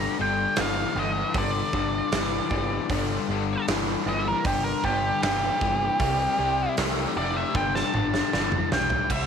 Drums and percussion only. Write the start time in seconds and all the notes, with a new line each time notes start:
0.56 snare, open hi-hat
1.34 kick, open hi-hat
1.73 kick
2.12 snare, open hi-hat
2.51 kick
2.90 kick, open hi-hat
3.68 snare, open hi-hat
4.45 kick, open hi-hat
4.84 kick
5.23 snare, open hi-hat
5.61 kick
6.00 kick, open hi-hat
6.77 snare, open hi-hat
7.55 kick
7.76 snare
7.94 mid tom
8.14 snare
8.33 snare
8.52 mid tom
8.72 snare
8.90 floor tom
9.10 kick, crash